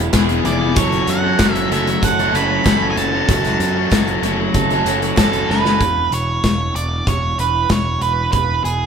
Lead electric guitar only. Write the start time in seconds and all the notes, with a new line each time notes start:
0.46 D5
0.77 C#5
1.10 F#5
1.54 E5
1.72 E5
2.04 F#5
2.35 B5
2.91 G#5
2.98 A5
5.18 A4
5.50 B4
6.14 C#5
6.76 D5
7.08 C#5
7.40 B4
7.72 C#5
8.02 B4
8.32 B4
8.64 G#4